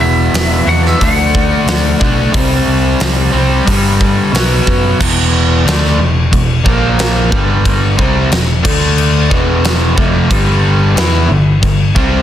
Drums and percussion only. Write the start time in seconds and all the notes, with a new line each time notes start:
0.34 snare, open hi-hat
0.86 snare
1.01 kick, open hi-hat
1.35 kick
1.68 snare, open hi-hat
2.01 kick
2.34 kick, open hi-hat
3.00 snare, open hi-hat
3.67 kick, open hi-hat
4.01 kick
4.35 snare, open hi-hat
4.67 kick
5.01 kick, crash
5.68 snare, crash
5.85 snare
6.33 kick, crash
6.66 kick
6.99 snare, crash
7.32 kick
7.65 kick, crash
7.99 kick
8.32 snare, crash
8.65 kick, crash
8.98 crash
9.31 kick
9.64 snare, crash
9.98 kick
10.31 kick, crash
10.97 snare, crash
11.63 kick, crash
11.96 kick